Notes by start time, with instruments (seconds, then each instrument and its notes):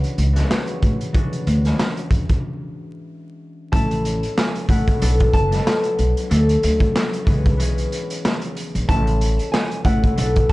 Already playing: harp E3 G#3 B3 C#4 D4 F#4
0.04 closed hi-hat
0.18 upright bass C#2, closed hi-hat
0.33 harp E3 G#3 D4 F#4, snare, closed hi-hat
0.38 harp C#4
0.51 snare, clap
0.67 closed hi-hat
0.82 upright bass A1, kick, closed hi-hat
1.01 closed hi-hat
1.13 harp E3 G#3 C#4 D4 F#4, kick, closed hi-hat
1.33 closed hi-hat
1.47 upright bass D2, closed hi-hat
1.65 snare, closed hi-hat
1.79 snare, clap
1.97 closed hi-hat
2.11 upright bass E2, kick, closed hi-hat
2.29 kick, closed hi-hat
3.72 upright bass A1, harp A3 C#4 E4, nylon-string guitar A5, kick, closed hi-hat
3.91 closed hi-hat
4.05 closed hi-hat
4.23 closed hi-hat
4.38 nylon-string guitar G#5, snare, clap
4.55 closed hi-hat
4.69 upright bass A1, harp A3 C#4 E4, nylon-string guitar F#5, kick, closed hi-hat
4.87 kick, closed hi-hat
4.99 upright bass B1, harp F#3 A3 D4 A4, closed hi-hat
5.04 harp B3
5.20 kick, closed hi-hat
5.33 upright bass F#1, nylon-string guitar A5, kick, closed hi-hat
5.48 harp F#3 A3 D4 A4
5.52 harp B3, snare, closed hi-hat
5.67 snare, clap
5.84 closed hi-hat
5.99 upright bass B1, closed hi-hat
6.17 closed hi-hat
6.29 upright bass D2, harp F#3 A3 C#4 D4 A4, closed hi-hat
6.49 closed hi-hat
6.63 upright bass D2, closed hi-hat
6.80 kick, closed hi-hat
6.96 snare, clap
7.13 closed hi-hat
7.25 upright bass C#2, harp E3 G#3 C#4 G#4, kick, closed hi-hat
7.29 harp B3
7.46 kick, closed hi-hat
7.57 upright bass B1, harp E3 G#3 B3 C#4, closed hi-hat
7.62 harp G#4
7.78 closed hi-hat
7.92 closed hi-hat
8.10 closed hi-hat
8.25 snare, clap
8.42 closed hi-hat
8.57 closed hi-hat
8.75 upright bass A#1, closed hi-hat
8.88 upright bass A1, harp A3 C#4 E4, nylon-string guitar A5, kick, closed hi-hat
9.07 closed hi-hat
9.21 closed hi-hat
9.39 closed hi-hat
9.52 nylon-string guitar G#5, snare, clap
9.71 closed hi-hat
9.85 upright bass A1, harp A3 C#4 E4, nylon-string guitar F#5, kick, closed hi-hat
10.04 kick, closed hi-hat
10.16 upright bass B1, harp F#3 A3 D4 A4, closed hi-hat
10.20 harp B3
10.36 kick, closed hi-hat
10.49 nylon-string guitar A5